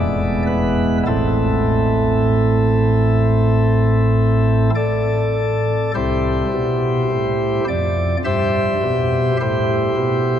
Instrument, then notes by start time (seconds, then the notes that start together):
pipe organ
Already playing: E1 E2 G#3 B3 E4 D5
0.47 B4
1.07 A1 A2 A3 C4 E4 A4
4.75 A4 D5
5.95 C2 C3 E4 G4 C5
6.53 B2
7.12 A2
7.68 F2 D5
8.25 G2 G4 C5 E5
8.83 B2
9.41 A2 E4 G4 C5
9.96 B2